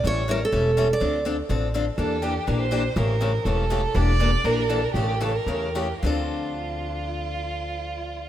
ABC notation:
X:1
M:4/4
L:1/8
Q:"Swing" 1/4=245
K:Dm
V:1 name="Steel-string acoustic guitar"
^c2 B A4 d- | d2 z6 | z8 | z8 |
z8 | z8 | z8 | z8 |]
V:2 name="Violin"
z8 | z8 | A2 G2 B c3 | B4 A4 |
d4 B2 A B | G2 A B3 G2 | F8- | F8 |]
V:3 name="Steel-string acoustic guitar"
[E,G,^CEA] z [E,G,CEA] z [E,G,CEA] z [E,G,CEA] z | [D,F,CDA] z [D,F,CDA] z [D,F,CDA] z [D,F,CDA] z | [E,B,DG] z [E,B,DG] z [E,B,DG] z [E,B,DG] z | [^C,E,A,^CG] z [C,E,A,CG] z [C,E,A,CG] z [C,E,A,CG] z |
[E,B,DG] z [E,B,DG] z [E,B,DG] z [E,B,DG] z | [^C,E,A,^CG] z [C,E,A,CG] z [C,E,A,CG] z [C,E,A,CG] z | [D,F,CDA]8- | [D,F,CDA]8 |]
V:4 name="Upright bass" clef=bass
A,,,4 E,,,4 | D,,4 A,,,4 | E,,4 B,,,4 | A,,,4 E,,,4 |
E,,,4 B,,,4 | A,,,4 E,,4 | D,,8- | D,,8 |]